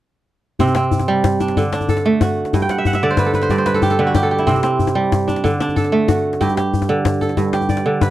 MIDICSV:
0, 0, Header, 1, 3, 480
1, 0, Start_track
1, 0, Tempo, 322581
1, 893, Time_signature, 12, 3, 24, 8
1, 12056, End_track
2, 0, Start_track
2, 0, Title_t, "Kora"
2, 0, Program_c, 0, 46
2, 889, Note_on_c, 0, 60, 71
2, 890, Note_on_c, 0, 48, 81
2, 1126, Note_off_c, 0, 60, 0
2, 1132, Note_on_c, 0, 60, 60
2, 1608, Note_on_c, 0, 55, 82
2, 2090, Note_on_c, 0, 62, 58
2, 2337, Note_on_c, 0, 50, 71
2, 2409, Note_off_c, 0, 48, 0
2, 2409, Note_off_c, 0, 55, 0
2, 2574, Note_off_c, 0, 62, 0
2, 2580, Note_on_c, 0, 62, 64
2, 2816, Note_on_c, 0, 69, 60
2, 3059, Note_on_c, 0, 57, 75
2, 3297, Note_on_c, 0, 66, 58
2, 3778, Note_on_c, 0, 43, 81
2, 3810, Note_off_c, 0, 60, 0
2, 3850, Note_off_c, 0, 50, 0
2, 3900, Note_on_c, 0, 79, 63
2, 4025, Note_on_c, 0, 78, 65
2, 4142, Note_on_c, 0, 76, 70
2, 4257, Note_off_c, 0, 78, 0
2, 4263, Note_on_c, 0, 78, 66
2, 4353, Note_off_c, 0, 79, 0
2, 4379, Note_off_c, 0, 76, 0
2, 4385, Note_on_c, 0, 76, 68
2, 4506, Note_on_c, 0, 50, 79
2, 4508, Note_on_c, 0, 74, 71
2, 4621, Note_on_c, 0, 72, 66
2, 4741, Note_on_c, 0, 71, 69
2, 4777, Note_off_c, 0, 69, 0
2, 4856, Note_on_c, 0, 69, 56
2, 4973, Note_off_c, 0, 71, 0
2, 4979, Note_on_c, 0, 71, 62
2, 5069, Note_off_c, 0, 72, 0
2, 5079, Note_off_c, 0, 62, 0
2, 5097, Note_on_c, 0, 72, 67
2, 5199, Note_off_c, 0, 43, 0
2, 5211, Note_off_c, 0, 74, 0
2, 5216, Note_on_c, 0, 43, 73
2, 5217, Note_on_c, 0, 74, 59
2, 5305, Note_off_c, 0, 66, 0
2, 5305, Note_off_c, 0, 78, 0
2, 5325, Note_off_c, 0, 72, 0
2, 5331, Note_on_c, 0, 72, 65
2, 5421, Note_off_c, 0, 71, 0
2, 5450, Note_on_c, 0, 71, 68
2, 5565, Note_off_c, 0, 69, 0
2, 5571, Note_on_c, 0, 69, 68
2, 5694, Note_on_c, 0, 67, 66
2, 5807, Note_off_c, 0, 69, 0
2, 5813, Note_on_c, 0, 69, 61
2, 5918, Note_off_c, 0, 50, 0
2, 5923, Note_off_c, 0, 76, 0
2, 5930, Note_off_c, 0, 71, 0
2, 5935, Note_on_c, 0, 50, 79
2, 5936, Note_on_c, 0, 71, 66
2, 6025, Note_off_c, 0, 72, 0
2, 6031, Note_off_c, 0, 57, 0
2, 6053, Note_on_c, 0, 66, 61
2, 6142, Note_off_c, 0, 67, 0
2, 6180, Note_on_c, 0, 67, 69
2, 6285, Note_off_c, 0, 69, 0
2, 6291, Note_on_c, 0, 69, 61
2, 6407, Note_off_c, 0, 67, 0
2, 6413, Note_on_c, 0, 67, 64
2, 6503, Note_off_c, 0, 66, 0
2, 6530, Note_on_c, 0, 64, 59
2, 6648, Note_on_c, 0, 48, 81
2, 6650, Note_on_c, 0, 60, 71
2, 6731, Note_off_c, 0, 43, 0
2, 6731, Note_off_c, 0, 50, 0
2, 6738, Note_off_c, 0, 71, 0
2, 6866, Note_off_c, 0, 74, 0
2, 6889, Note_off_c, 0, 60, 0
2, 6895, Note_on_c, 0, 60, 62
2, 7370, Note_on_c, 0, 55, 81
2, 7852, Note_on_c, 0, 62, 55
2, 8093, Note_on_c, 0, 50, 77
2, 8170, Note_off_c, 0, 48, 0
2, 8170, Note_off_c, 0, 55, 0
2, 8252, Note_off_c, 0, 69, 0
2, 8335, Note_off_c, 0, 62, 0
2, 8341, Note_on_c, 0, 62, 67
2, 8515, Note_off_c, 0, 67, 0
2, 8574, Note_on_c, 0, 69, 61
2, 8813, Note_on_c, 0, 57, 74
2, 8862, Note_off_c, 0, 64, 0
2, 9049, Note_on_c, 0, 66, 56
2, 9534, Note_on_c, 0, 43, 85
2, 9538, Note_on_c, 0, 67, 70
2, 9573, Note_off_c, 0, 60, 0
2, 9609, Note_off_c, 0, 50, 0
2, 9772, Note_off_c, 0, 67, 0
2, 9778, Note_on_c, 0, 67, 57
2, 9867, Note_off_c, 0, 66, 0
2, 10254, Note_on_c, 0, 50, 87
2, 10535, Note_off_c, 0, 69, 0
2, 10731, Note_on_c, 0, 69, 61
2, 10840, Note_off_c, 0, 62, 0
2, 10950, Note_off_c, 0, 43, 0
2, 10968, Note_on_c, 0, 43, 73
2, 11206, Note_off_c, 0, 67, 0
2, 11212, Note_on_c, 0, 67, 60
2, 11450, Note_on_c, 0, 74, 59
2, 11673, Note_off_c, 0, 50, 0
2, 11691, Note_on_c, 0, 50, 75
2, 11785, Note_off_c, 0, 57, 0
2, 11926, Note_on_c, 0, 71, 61
2, 12056, Note_off_c, 0, 43, 0
2, 12056, Note_off_c, 0, 50, 0
2, 12056, Note_off_c, 0, 67, 0
2, 12056, Note_off_c, 0, 69, 0
2, 12056, Note_off_c, 0, 71, 0
2, 12056, Note_off_c, 0, 74, 0
2, 12056, End_track
3, 0, Start_track
3, 0, Title_t, "Djembe"
3, 883, Note_on_c, 9, 64, 69
3, 1002, Note_on_c, 9, 63, 52
3, 1032, Note_off_c, 9, 64, 0
3, 1111, Note_on_c, 9, 62, 71
3, 1151, Note_off_c, 9, 63, 0
3, 1234, Note_off_c, 9, 62, 0
3, 1234, Note_on_c, 9, 62, 22
3, 1360, Note_on_c, 9, 64, 68
3, 1383, Note_off_c, 9, 62, 0
3, 1479, Note_on_c, 9, 62, 51
3, 1479, Note_on_c, 9, 63, 53
3, 1509, Note_off_c, 9, 64, 0
3, 1628, Note_off_c, 9, 62, 0
3, 1628, Note_off_c, 9, 63, 0
3, 1725, Note_on_c, 9, 62, 21
3, 1845, Note_off_c, 9, 62, 0
3, 1845, Note_on_c, 9, 62, 71
3, 1845, Note_on_c, 9, 64, 68
3, 1994, Note_off_c, 9, 62, 0
3, 1994, Note_off_c, 9, 64, 0
3, 2086, Note_on_c, 9, 62, 21
3, 2086, Note_on_c, 9, 63, 64
3, 2208, Note_off_c, 9, 62, 0
3, 2208, Note_on_c, 9, 62, 54
3, 2235, Note_off_c, 9, 63, 0
3, 2333, Note_on_c, 9, 64, 64
3, 2357, Note_off_c, 9, 62, 0
3, 2482, Note_off_c, 9, 64, 0
3, 2566, Note_on_c, 9, 62, 69
3, 2689, Note_on_c, 9, 63, 53
3, 2715, Note_off_c, 9, 62, 0
3, 2807, Note_on_c, 9, 64, 66
3, 2838, Note_off_c, 9, 63, 0
3, 2927, Note_on_c, 9, 62, 53
3, 2955, Note_off_c, 9, 64, 0
3, 3076, Note_off_c, 9, 62, 0
3, 3287, Note_on_c, 9, 62, 62
3, 3287, Note_on_c, 9, 63, 66
3, 3287, Note_on_c, 9, 64, 66
3, 3436, Note_off_c, 9, 62, 0
3, 3436, Note_off_c, 9, 63, 0
3, 3436, Note_off_c, 9, 64, 0
3, 3646, Note_on_c, 9, 62, 50
3, 3769, Note_on_c, 9, 64, 72
3, 3795, Note_off_c, 9, 62, 0
3, 3882, Note_on_c, 9, 63, 54
3, 3918, Note_off_c, 9, 64, 0
3, 4007, Note_on_c, 9, 62, 66
3, 4031, Note_off_c, 9, 63, 0
3, 4126, Note_off_c, 9, 62, 0
3, 4126, Note_on_c, 9, 62, 23
3, 4243, Note_on_c, 9, 64, 68
3, 4275, Note_off_c, 9, 62, 0
3, 4363, Note_on_c, 9, 62, 54
3, 4363, Note_on_c, 9, 63, 53
3, 4392, Note_off_c, 9, 64, 0
3, 4512, Note_off_c, 9, 62, 0
3, 4512, Note_off_c, 9, 63, 0
3, 4608, Note_on_c, 9, 62, 23
3, 4718, Note_off_c, 9, 62, 0
3, 4718, Note_on_c, 9, 62, 66
3, 4718, Note_on_c, 9, 64, 69
3, 4867, Note_off_c, 9, 62, 0
3, 4867, Note_off_c, 9, 64, 0
3, 4961, Note_on_c, 9, 62, 22
3, 4961, Note_on_c, 9, 63, 64
3, 5083, Note_off_c, 9, 62, 0
3, 5083, Note_on_c, 9, 62, 52
3, 5110, Note_off_c, 9, 63, 0
3, 5201, Note_on_c, 9, 64, 63
3, 5232, Note_off_c, 9, 62, 0
3, 5350, Note_off_c, 9, 64, 0
3, 5444, Note_on_c, 9, 62, 69
3, 5565, Note_on_c, 9, 63, 50
3, 5593, Note_off_c, 9, 62, 0
3, 5683, Note_on_c, 9, 64, 69
3, 5714, Note_off_c, 9, 63, 0
3, 5805, Note_on_c, 9, 62, 51
3, 5831, Note_off_c, 9, 64, 0
3, 5954, Note_off_c, 9, 62, 0
3, 6169, Note_on_c, 9, 62, 58
3, 6169, Note_on_c, 9, 63, 58
3, 6169, Note_on_c, 9, 64, 62
3, 6318, Note_off_c, 9, 62, 0
3, 6318, Note_off_c, 9, 63, 0
3, 6318, Note_off_c, 9, 64, 0
3, 6526, Note_on_c, 9, 62, 44
3, 6653, Note_on_c, 9, 64, 62
3, 6675, Note_off_c, 9, 62, 0
3, 6772, Note_on_c, 9, 63, 50
3, 6802, Note_off_c, 9, 64, 0
3, 6890, Note_on_c, 9, 62, 66
3, 6921, Note_off_c, 9, 63, 0
3, 7012, Note_off_c, 9, 62, 0
3, 7012, Note_on_c, 9, 62, 19
3, 7132, Note_on_c, 9, 64, 61
3, 7161, Note_off_c, 9, 62, 0
3, 7250, Note_on_c, 9, 62, 53
3, 7250, Note_on_c, 9, 63, 50
3, 7281, Note_off_c, 9, 64, 0
3, 7399, Note_off_c, 9, 62, 0
3, 7399, Note_off_c, 9, 63, 0
3, 7497, Note_on_c, 9, 62, 21
3, 7623, Note_off_c, 9, 62, 0
3, 7623, Note_on_c, 9, 62, 61
3, 7623, Note_on_c, 9, 64, 65
3, 7771, Note_off_c, 9, 62, 0
3, 7771, Note_off_c, 9, 64, 0
3, 7864, Note_on_c, 9, 62, 20
3, 7864, Note_on_c, 9, 63, 62
3, 7981, Note_off_c, 9, 62, 0
3, 7981, Note_on_c, 9, 62, 47
3, 8012, Note_off_c, 9, 63, 0
3, 8102, Note_on_c, 9, 64, 61
3, 8130, Note_off_c, 9, 62, 0
3, 8251, Note_off_c, 9, 64, 0
3, 8339, Note_on_c, 9, 62, 67
3, 8460, Note_on_c, 9, 63, 45
3, 8488, Note_off_c, 9, 62, 0
3, 8580, Note_on_c, 9, 64, 58
3, 8609, Note_off_c, 9, 63, 0
3, 8696, Note_on_c, 9, 62, 45
3, 8729, Note_off_c, 9, 64, 0
3, 8845, Note_off_c, 9, 62, 0
3, 9054, Note_on_c, 9, 62, 58
3, 9054, Note_on_c, 9, 63, 58
3, 9054, Note_on_c, 9, 64, 63
3, 9203, Note_off_c, 9, 62, 0
3, 9203, Note_off_c, 9, 63, 0
3, 9203, Note_off_c, 9, 64, 0
3, 9418, Note_on_c, 9, 62, 46
3, 9538, Note_on_c, 9, 64, 61
3, 9567, Note_off_c, 9, 62, 0
3, 9655, Note_on_c, 9, 63, 50
3, 9687, Note_off_c, 9, 64, 0
3, 9782, Note_on_c, 9, 62, 65
3, 9804, Note_off_c, 9, 63, 0
3, 9931, Note_off_c, 9, 62, 0
3, 10022, Note_on_c, 9, 64, 62
3, 10145, Note_on_c, 9, 62, 51
3, 10145, Note_on_c, 9, 63, 52
3, 10171, Note_off_c, 9, 64, 0
3, 10294, Note_off_c, 9, 62, 0
3, 10294, Note_off_c, 9, 63, 0
3, 10492, Note_on_c, 9, 62, 68
3, 10492, Note_on_c, 9, 64, 65
3, 10641, Note_off_c, 9, 62, 0
3, 10641, Note_off_c, 9, 64, 0
3, 10735, Note_on_c, 9, 63, 57
3, 10852, Note_on_c, 9, 62, 45
3, 10884, Note_off_c, 9, 63, 0
3, 10968, Note_on_c, 9, 64, 62
3, 11001, Note_off_c, 9, 62, 0
3, 11117, Note_off_c, 9, 64, 0
3, 11205, Note_on_c, 9, 62, 70
3, 11324, Note_on_c, 9, 63, 51
3, 11354, Note_off_c, 9, 62, 0
3, 11442, Note_on_c, 9, 64, 63
3, 11473, Note_off_c, 9, 63, 0
3, 11561, Note_on_c, 9, 62, 56
3, 11591, Note_off_c, 9, 64, 0
3, 11709, Note_off_c, 9, 62, 0
3, 11925, Note_on_c, 9, 62, 62
3, 11925, Note_on_c, 9, 63, 66
3, 11925, Note_on_c, 9, 64, 61
3, 12056, Note_off_c, 9, 62, 0
3, 12056, Note_off_c, 9, 63, 0
3, 12056, Note_off_c, 9, 64, 0
3, 12056, End_track
0, 0, End_of_file